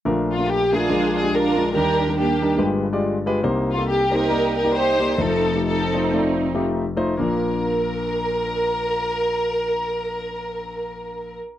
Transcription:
0.05 grand piano A#1 A#2 A3 D4 F4 A#4
0.32 string section F4
0.38 grand piano A3 D4 F4 A#4
0.49 string section G4
0.72 grand piano A3 D4 F4 A#4, string section D4 F4 G#4
0.89 grand piano A#1 A#2 G#3 D4 F4 A#4
1.16 string section G#4
1.22 grand piano G#3 D4 F4 G4
1.33 string section D4 F4 A#4
1.56 grand piano G#3 D4 F4 A#4
1.74 grand piano D#2 D#3 G3 D4 D#4 A#4, string section D4 G4 A#4
2.08 grand piano G3 D4 D#4 A#4
2.18 string section A#3 D4 G4
2.42 grand piano G3 D4 D#4 A#4
2.58 grand piano G1 G2 G#3 F4 G4 B4
2.93 grand piano G#3 F4 G4 D5
3.26 grand piano G#3 F4 G4 B4
3.43 grand piano C2 C3 A#3 D#4 G4 C5
3.71 string section F4
3.77 grand piano A#3 D#4 G4 A4
3.89 string section G4
4.11 grand piano A#3 D#4 G4 C5, string section D#4 G4 A#4
4.29 grand piano A#3 D#4 G4 D5
4.56 string section A#4
4.64 grand piano A#3 D#4 G4 D5
4.74 string section D#4 G4 C5
4.99 grand piano A#3 D#4 G4 D5
5.18 grand piano F1 F2 A3 D#4 F4 C5, string section C4 D#4 A4
5.55 grand piano A3 D#4 F4 G4
5.67 string section C4 D#4 A4
5.94 grand piano A3 D#4 F4 C5
6.14 grand piano A3 D#4 F4 D5
6.55 grand piano A3 D#4 F4 G4
6.97 grand piano A3 D#4 F4 C5
7.17 grand piano A#1 A#3 D4 F4, string section A#4
7.21 grand piano A#4

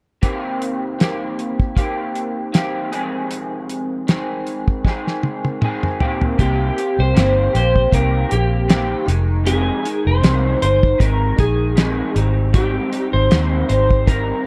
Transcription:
0.22 clean electric guitar C3 D#3 A#3 C4 G4, kick, closed hi-hat
0.62 closed hi-hat
0.99 clean electric guitar D#3 A#3 C4 G4, snare, closed hi-hat
1.39 closed hi-hat
1.60 kick
1.75 clean electric guitar D#3 A#3 C4 G4, kick, closed hi-hat
2.15 closed hi-hat
2.52 clean electric guitar D#3 A#3 C4 G4, snare, closed hi-hat
2.92 clean electric guitar F2 C3 D#3 G#3 C4 G#4, closed hi-hat
3.31 closed hi-hat
3.70 closed hi-hat
4.07 clean electric guitar D#3 G#3 C4 G#4, snare, closed hi-hat
4.47 closed hi-hat
4.68 kick
4.85 clean electric guitar D#3 G#3 C4 G#4, kick, snare
5.07 snare
5.23 high tom
5.45 high tom
5.61 clean electric guitar D#3 G#3 C4 G#4, mid tom
5.83 mid tom
6.00 clean electric guitar C3 D#3 A#3 C4 G4, floor tom
6.21 floor tom
6.38 fingered electric bass C2, clean electric guitar C3 D#3 A#3 C4 G4, electric slide guitar G4, kick, closed hi-hat
6.76 clean electric guitar A#3 C4 G4, closed hi-hat
6.99 fingered electric bass C2, electric slide guitar C5
7.15 fingered electric bass G1, clean electric guitar C3 D#3 A#3 C4 G4, snare, closed hi-hat
7.53 fingered electric bass A#1, clean electric guitar A#3 C4 G4, electric slide guitar C5, closed hi-hat
7.76 kick
7.92 fingered electric bass C2, clean electric guitar D#3 A#3 C4 G4, electric slide guitar A#4, kick, closed hi-hat
8.29 fingered electric bass A#1, clean electric guitar A#3 C4 G4, electric slide guitar G4, closed hi-hat
8.68 clean electric guitar C3 D#3 A#3 C4 G4, snare, closed hi-hat
9.06 fingered electric bass F1, clean electric guitar D#3 G#3 D#4, closed hi-hat
9.44 clean electric guitar F2 C3 D#3 G#3 D#4, electric slide guitar G#4, closed hi-hat
9.83 clean electric guitar D#3 G#3 D#4, closed hi-hat
10.06 fingered electric bass F1, electric slide guitar C5
10.21 fingered electric bass C2, clean electric guitar F2 C3 D#3 G#3 D#4, snare, closed hi-hat
10.60 fingered electric bass G1, clean electric guitar D#3 G#3 D#4, electric slide guitar C5, closed hi-hat
10.83 kick
10.98 fingered electric bass G#1, clean electric guitar C3 D#3 G#3 D#4, electric slide guitar A#4, kick, closed hi-hat
11.37 fingered electric bass A#1, clean electric guitar D#3 G#3 D#4, electric slide guitar G#4, kick, closed hi-hat
11.76 clean electric guitar F2 C3 D#3 G#3 D#4, snare, closed hi-hat
12.14 fingered electric bass G#1, clean electric guitar G3 C4 D#4, closed hi-hat
12.53 clean electric guitar G#2 D#3 G3 C4 D#4, electric slide guitar G4, kick, closed hi-hat
12.92 clean electric guitar G3 C4 D#4, closed hi-hat
13.13 fingered electric bass G#1, electric slide guitar C5
13.30 fingered electric bass D#2, clean electric guitar G#2 D#3 G3 C4 D#4, snare, closed hi-hat
13.68 fingered electric bass G#1, clean electric guitar G3 C4 D#4, electric slide guitar C5, closed hi-hat
13.91 kick
14.07 clean electric guitar D#3 G3 C4 D#4, electric slide guitar A#4, kick, closed hi-hat

